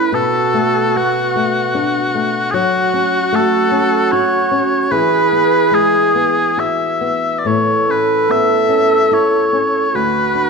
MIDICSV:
0, 0, Header, 1, 4, 480
1, 0, Start_track
1, 0, Key_signature, 3, "major"
1, 0, Tempo, 819672
1, 68, Time_signature, 3, 2, 24, 8
1, 1026, Tempo, 794702
1, 3426, Tempo, 853485
1, 4866, Tempo, 818554
1, 6163, End_track
2, 0, Start_track
2, 0, Title_t, "Bagpipes"
2, 0, Program_c, 0, 109
2, 0, Note_on_c, 0, 71, 67
2, 85, Note_off_c, 0, 71, 0
2, 85, Note_on_c, 0, 69, 82
2, 567, Note_off_c, 0, 69, 0
2, 567, Note_on_c, 0, 66, 67
2, 1482, Note_off_c, 0, 66, 0
2, 1482, Note_on_c, 0, 68, 89
2, 1501, Note_off_c, 0, 68, 0
2, 1501, Note_on_c, 0, 66, 89
2, 1993, Note_off_c, 0, 66, 0
2, 1993, Note_on_c, 0, 69, 88
2, 2456, Note_off_c, 0, 69, 0
2, 2456, Note_on_c, 0, 73, 85
2, 2934, Note_off_c, 0, 73, 0
2, 2934, Note_on_c, 0, 71, 96
2, 3438, Note_off_c, 0, 71, 0
2, 3438, Note_on_c, 0, 68, 77
2, 3915, Note_off_c, 0, 68, 0
2, 3915, Note_on_c, 0, 76, 66
2, 4359, Note_off_c, 0, 76, 0
2, 4359, Note_on_c, 0, 74, 53
2, 4407, Note_off_c, 0, 74, 0
2, 4407, Note_on_c, 0, 73, 84
2, 4652, Note_off_c, 0, 73, 0
2, 4652, Note_on_c, 0, 71, 68
2, 4880, Note_off_c, 0, 71, 0
2, 4880, Note_on_c, 0, 76, 86
2, 5364, Note_off_c, 0, 76, 0
2, 5364, Note_on_c, 0, 73, 67
2, 5843, Note_off_c, 0, 73, 0
2, 5843, Note_on_c, 0, 71, 86
2, 6163, Note_off_c, 0, 71, 0
2, 6163, End_track
3, 0, Start_track
3, 0, Title_t, "Flute"
3, 0, Program_c, 1, 73
3, 0, Note_on_c, 1, 64, 74
3, 72, Note_on_c, 1, 66, 97
3, 81, Note_off_c, 1, 64, 0
3, 1355, Note_off_c, 1, 66, 0
3, 1512, Note_on_c, 1, 66, 119
3, 2937, Note_on_c, 1, 68, 111
3, 2946, Note_off_c, 1, 66, 0
3, 4149, Note_off_c, 1, 68, 0
3, 4390, Note_on_c, 1, 69, 100
3, 5803, Note_off_c, 1, 69, 0
3, 5829, Note_on_c, 1, 66, 99
3, 6163, Note_off_c, 1, 66, 0
3, 6163, End_track
4, 0, Start_track
4, 0, Title_t, "Nylon-string guitar"
4, 0, Program_c, 2, 24
4, 0, Note_on_c, 2, 45, 62
4, 0, Note_on_c, 2, 57, 50
4, 0, Note_on_c, 2, 61, 51
4, 0, Note_on_c, 2, 64, 49
4, 69, Note_off_c, 2, 45, 0
4, 71, Note_on_c, 2, 47, 73
4, 118, Note_off_c, 2, 61, 0
4, 118, Note_off_c, 2, 64, 0
4, 315, Note_off_c, 2, 57, 0
4, 315, Note_on_c, 2, 57, 46
4, 561, Note_on_c, 2, 59, 54
4, 792, Note_off_c, 2, 57, 0
4, 794, Note_on_c, 2, 57, 51
4, 1023, Note_on_c, 2, 62, 66
4, 1262, Note_off_c, 2, 57, 0
4, 1265, Note_on_c, 2, 57, 57
4, 1501, Note_on_c, 2, 54, 76
4, 1511, Note_off_c, 2, 47, 0
4, 1555, Note_off_c, 2, 62, 0
4, 1562, Note_off_c, 2, 59, 0
4, 1739, Note_off_c, 2, 57, 0
4, 1741, Note_on_c, 2, 61, 57
4, 1976, Note_on_c, 2, 57, 57
4, 2205, Note_off_c, 2, 61, 0
4, 2213, Note_on_c, 2, 61, 51
4, 2462, Note_on_c, 2, 66, 65
4, 2687, Note_off_c, 2, 61, 0
4, 2694, Note_on_c, 2, 61, 59
4, 2934, Note_off_c, 2, 54, 0
4, 2937, Note_on_c, 2, 52, 74
4, 2980, Note_off_c, 2, 57, 0
4, 2984, Note_off_c, 2, 61, 0
4, 3182, Note_on_c, 2, 59, 45
4, 3419, Note_on_c, 2, 56, 48
4, 3436, Note_off_c, 2, 66, 0
4, 3662, Note_off_c, 2, 59, 0
4, 3664, Note_on_c, 2, 59, 42
4, 3905, Note_on_c, 2, 66, 53
4, 4145, Note_off_c, 2, 59, 0
4, 4148, Note_on_c, 2, 59, 45
4, 4395, Note_on_c, 2, 45, 60
4, 4438, Note_off_c, 2, 56, 0
4, 4442, Note_off_c, 2, 66, 0
4, 4637, Note_off_c, 2, 59, 0
4, 4639, Note_on_c, 2, 61, 44
4, 4870, Note_on_c, 2, 59, 47
4, 4942, Note_off_c, 2, 52, 0
4, 5095, Note_off_c, 2, 61, 0
4, 5102, Note_on_c, 2, 61, 48
4, 5351, Note_on_c, 2, 64, 49
4, 5587, Note_off_c, 2, 61, 0
4, 5594, Note_on_c, 2, 61, 55
4, 5829, Note_off_c, 2, 45, 0
4, 5841, Note_on_c, 2, 38, 63
4, 5877, Note_off_c, 2, 59, 0
4, 5878, Note_off_c, 2, 61, 0
4, 6075, Note_on_c, 2, 62, 45
4, 6093, Note_off_c, 2, 64, 0
4, 6163, Note_off_c, 2, 38, 0
4, 6163, Note_off_c, 2, 62, 0
4, 6163, End_track
0, 0, End_of_file